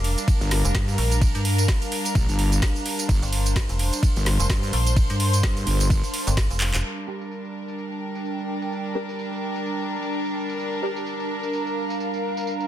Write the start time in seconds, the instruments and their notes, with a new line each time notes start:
Already playing: fm bass F1, string section G3 D4 A#4, ambient pad D4 A#4 F5 A#5
0.04 open hi-hat
0.18 closed hi-hat, tambourine
0.28 kick, ride, tambourine
0.41 wobble bass G1, closed hi-hat, tambourine
0.51 snare, open hi-hat
0.65 fm bass F1, closed hi-hat, tambourine
0.75 wobble bass G2, kick, snare, ride, tambourine
0.88 closed hi-hat, tambourine
0.98 fm bass A#1, open hi-hat
1.11 closed hi-hat, tambourine
1.21 kick, ride, tambourine
1.35 fm bass G2, closed hi-hat, tambourine
1.45 open hi-hat
1.58 closed hi-hat, tambourine
1.68 kick, snare, ride
1.82 closed hi-hat, tambourine
1.92 open hi-hat
2.05 closed hi-hat, tambourine
2.15 wobble bass A#1, kick, ride, tambourine
2.29 wobble bass G1, closed hi-hat, tambourine
2.39 open hi-hat
2.52 closed hi-hat, tambourine
2.62 kick, snare, ride, tambourine
2.76 closed hi-hat, tambourine
2.86 open hi-hat
2.99 closed hi-hat, tambourine
3.09 wobble bass G1, string section C5, kick, ride, tambourine
3.22 fm bass G1, closed hi-hat, tambourine
3.33 open hi-hat
3.46 closed hi-hat, tambourine
3.51 ambient pad C6
3.56 kick, snare, ride, tambourine
3.69 fm bass F1, closed hi-hat, tambourine
3.79 open hi-hat
3.93 closed hi-hat, tambourine
4.03 kick, ride, tambourine
4.16 wobble bass G1, closed hi-hat, tambourine
4.26 snare, open hi-hat
4.40 fm bass F1, closed hi-hat, tambourine
4.50 wobble bass G2, kick, snare, ride
4.63 closed hi-hat, tambourine
4.73 fm bass A#1, open hi-hat
4.86 closed hi-hat, tambourine
4.96 kick, ride, tambourine
5.10 fm bass G2, closed hi-hat, tambourine
5.20 open hi-hat
5.33 closed hi-hat, tambourine
5.43 wobble bass G2, kick, snare, ride, tambourine
5.57 closed hi-hat, tambourine
5.67 wobble bass G1, open hi-hat
5.80 closed hi-hat, tambourine
5.90 kick, ride, tambourine
6.04 closed hi-hat, tambourine
6.14 open hi-hat
6.27 fm bass G1, closed hi-hat, tambourine
6.37 kick, snare, ride, tambourine
6.50 fm bass F1, closed hi-hat, tambourine
6.61 clap, open hi-hat
6.74 fm bass F1, clap, closed hi-hat, tambourine
6.84 string section G3 D4 A#4, ambient pad D4, tambourine
7.07 synth stab D4 G4 A#4, ambient pad A#4
7.21 tambourine
7.31 ambient pad G5, tambourine
7.45 tambourine
7.67 ambient pad A#5, tambourine
7.78 tambourine
7.92 tambourine
8.15 tambourine
8.25 tambourine
8.39 tambourine
8.62 tambourine
8.72 tambourine
8.85 tambourine
8.95 synth stab D4 G4 A#4
9.09 tambourine
9.19 tambourine
9.32 tambourine
9.56 tambourine
9.66 tambourine
9.79 tambourine
10.03 tambourine
10.13 tambourine
10.26 tambourine
10.50 tambourine
10.60 tambourine
10.73 tambourine
10.82 synth stab D4 G4 A#4
10.96 tambourine
11.06 tambourine
11.20 ambient pad F5, tambourine
11.43 tambourine
11.53 tambourine
11.67 tambourine
11.90 tambourine
12.00 tambourine
12.14 tambourine
12.37 tambourine
12.47 tambourine
12.60 tambourine